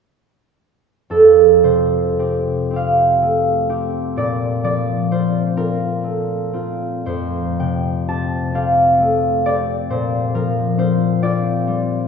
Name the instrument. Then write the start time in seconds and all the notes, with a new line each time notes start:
harp
1.10 F2 A4
1.64 C3 C5
2.19 C4 G4
2.71 C4 G4
2.76 F5
3.22 A3
3.69 C4 G4
4.16 A#2 D5
4.63 F3 D5
5.11 C4 F4 C5
5.56 C4 F4 A#4
6.04 A3
6.53 C4 F4
7.06 F2 C5
7.59 C3 G5
8.08 C4 G4 A5
8.54 C4 G4 F5
8.99 A3
9.45 C4 G4 D5
9.90 A#2 C5
10.34 F3 A#4
10.78 C4 F4 C5
11.22 C4 F4 D5
11.67 G3